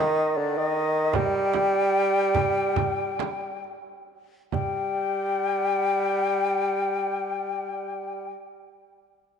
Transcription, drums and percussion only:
0, 0, Header, 1, 3, 480
1, 0, Start_track
1, 0, Tempo, 784314
1, 705, Time_signature, 4, 2, 24, 8
1, 1195, Tempo, 845070
1, 2155, Tempo, 918836
1, 5162, End_track
2, 0, Start_track
2, 0, Title_t, "Darbuka"
2, 694, Note_on_c, 9, 64, 99
2, 755, Note_off_c, 9, 64, 0
2, 817, Note_on_c, 9, 62, 22
2, 879, Note_off_c, 9, 62, 0
2, 939, Note_on_c, 9, 63, 63
2, 1001, Note_off_c, 9, 63, 0
2, 1060, Note_on_c, 9, 62, 22
2, 1121, Note_off_c, 9, 62, 0
2, 1188, Note_on_c, 9, 62, 24
2, 1245, Note_off_c, 9, 62, 0
2, 1307, Note_on_c, 9, 62, 19
2, 1364, Note_off_c, 9, 62, 0
2, 1418, Note_on_c, 9, 64, 96
2, 1475, Note_off_c, 9, 64, 0
2, 1540, Note_on_c, 9, 62, 22
2, 1597, Note_off_c, 9, 62, 0
2, 1654, Note_on_c, 9, 64, 102
2, 1711, Note_off_c, 9, 64, 0
2, 1779, Note_on_c, 9, 62, 21
2, 1836, Note_off_c, 9, 62, 0
2, 1904, Note_on_c, 9, 63, 72
2, 1961, Note_off_c, 9, 63, 0
2, 2155, Note_on_c, 9, 62, 23
2, 2207, Note_off_c, 9, 62, 0
2, 2625, Note_on_c, 9, 64, 71
2, 2677, Note_off_c, 9, 64, 0
2, 5162, End_track
3, 0, Start_track
3, 0, Title_t, "Frame drum"
3, 702, Note_on_c, 9, 64, 78
3, 764, Note_off_c, 9, 64, 0
3, 944, Note_on_c, 9, 64, 71
3, 1005, Note_off_c, 9, 64, 0
3, 1425, Note_on_c, 9, 64, 80
3, 1481, Note_off_c, 9, 64, 0
3, 1660, Note_on_c, 9, 64, 73
3, 1717, Note_off_c, 9, 64, 0
3, 1899, Note_on_c, 9, 64, 68
3, 1956, Note_off_c, 9, 64, 0
3, 2615, Note_on_c, 9, 64, 70
3, 2667, Note_off_c, 9, 64, 0
3, 5162, End_track
0, 0, End_of_file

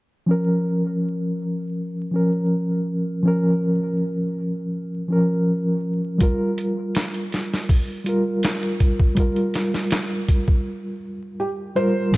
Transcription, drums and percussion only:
0, 0, Header, 1, 2, 480
1, 0, Start_track
1, 0, Tempo, 740741
1, 186, Time_signature, 4, 2, 24, 8
1, 7888, End_track
2, 0, Start_track
2, 0, Title_t, "Drums"
2, 4021, Note_on_c, 9, 42, 76
2, 4022, Note_on_c, 9, 36, 101
2, 4086, Note_off_c, 9, 42, 0
2, 4087, Note_off_c, 9, 36, 0
2, 4263, Note_on_c, 9, 42, 63
2, 4328, Note_off_c, 9, 42, 0
2, 4503, Note_on_c, 9, 42, 79
2, 4513, Note_on_c, 9, 38, 101
2, 4568, Note_off_c, 9, 42, 0
2, 4578, Note_off_c, 9, 38, 0
2, 4628, Note_on_c, 9, 42, 38
2, 4693, Note_off_c, 9, 42, 0
2, 4745, Note_on_c, 9, 42, 57
2, 4756, Note_on_c, 9, 38, 38
2, 4810, Note_off_c, 9, 42, 0
2, 4821, Note_off_c, 9, 38, 0
2, 4882, Note_on_c, 9, 38, 40
2, 4947, Note_off_c, 9, 38, 0
2, 4984, Note_on_c, 9, 36, 97
2, 4986, Note_on_c, 9, 46, 75
2, 5049, Note_off_c, 9, 36, 0
2, 5051, Note_off_c, 9, 46, 0
2, 5224, Note_on_c, 9, 42, 58
2, 5289, Note_off_c, 9, 42, 0
2, 5463, Note_on_c, 9, 42, 82
2, 5473, Note_on_c, 9, 38, 103
2, 5528, Note_off_c, 9, 42, 0
2, 5538, Note_off_c, 9, 38, 0
2, 5591, Note_on_c, 9, 42, 36
2, 5656, Note_off_c, 9, 42, 0
2, 5704, Note_on_c, 9, 42, 58
2, 5705, Note_on_c, 9, 36, 84
2, 5769, Note_off_c, 9, 42, 0
2, 5770, Note_off_c, 9, 36, 0
2, 5829, Note_on_c, 9, 36, 91
2, 5894, Note_off_c, 9, 36, 0
2, 5940, Note_on_c, 9, 42, 82
2, 5943, Note_on_c, 9, 36, 107
2, 6004, Note_off_c, 9, 42, 0
2, 6008, Note_off_c, 9, 36, 0
2, 6067, Note_on_c, 9, 42, 38
2, 6132, Note_off_c, 9, 42, 0
2, 6181, Note_on_c, 9, 42, 66
2, 6191, Note_on_c, 9, 38, 47
2, 6246, Note_off_c, 9, 42, 0
2, 6256, Note_off_c, 9, 38, 0
2, 6314, Note_on_c, 9, 38, 42
2, 6379, Note_off_c, 9, 38, 0
2, 6419, Note_on_c, 9, 42, 80
2, 6430, Note_on_c, 9, 38, 104
2, 6484, Note_off_c, 9, 42, 0
2, 6494, Note_off_c, 9, 38, 0
2, 6665, Note_on_c, 9, 36, 82
2, 6665, Note_on_c, 9, 42, 65
2, 6730, Note_off_c, 9, 36, 0
2, 6730, Note_off_c, 9, 42, 0
2, 6790, Note_on_c, 9, 36, 90
2, 6855, Note_off_c, 9, 36, 0
2, 7865, Note_on_c, 9, 36, 100
2, 7866, Note_on_c, 9, 42, 76
2, 7866, Note_on_c, 9, 49, 88
2, 7888, Note_off_c, 9, 36, 0
2, 7888, Note_off_c, 9, 42, 0
2, 7888, Note_off_c, 9, 49, 0
2, 7888, End_track
0, 0, End_of_file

